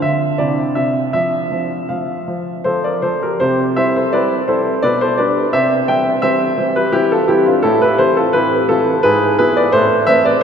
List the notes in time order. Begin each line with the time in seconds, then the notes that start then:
Already playing: D4 F4
0.02 D3 E5
0.38 C3 D4 E4 D5
0.75 C3 E5
1.13 F3 C4 F4 E5
1.52 F3
1.89 F3 F5
2.28 F3
2.64 F3 A4 C5
2.84 A#4 D5
3.02 F3 A4 C5
3.23 G4 A#4
3.40 C3 G4 C5
3.76 G3 C4 E4 C5 E5
3.96 A4 C5
4.13 G3 C4 E4 B4 D5
4.48 G3 C4 E4 A4 C5
4.83 B2 B4 D5
5.01 A4 C5
5.18 G3 D4 B4 D5
5.53 C3 C5 E5
5.88 E3 G3 C4 E5 G5
6.22 E3 G3 C4 C5 E5
6.58 E3 G3 C4
6.76 G4 B4
6.92 E3 G3 C4 E4 G4
7.12 F4 A4
7.28 E3 G3 C4 E4 G4
7.46 D4 F4
7.63 A2 E4 A4
7.82 G4 B4
7.98 E3 C4 E4 A4 C5
8.17 F4 A4
8.33 E3 C4 E4 G4 B4
8.69 E3 C4 E4 F4 A4
9.03 G#2 G#4 B4
9.39 E3 B3 E4 G#4 B4
9.57 B4 D5
9.72 A2 A4 C5
10.07 E3 A3 C4 C5 E5
10.25 B4 D5